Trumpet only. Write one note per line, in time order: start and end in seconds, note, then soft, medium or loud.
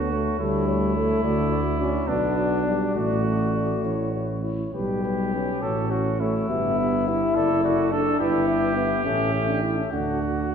0.00 0.38 F#4 medium
0.39 2.09 E4 medium
2.08 2.95 D4 medium
2.95 4.25 F#4 medium
4.73 5.64 G4 medium
5.62 5.92 A4 medium
5.91 6.22 F#4 medium
6.20 7.37 E4 medium
7.36 7.63 A4 medium
7.64 7.93 F#4 medium
7.92 8.19 A4 medium
8.20 9.88 G4 medium
9.92 10.55 F#4 soft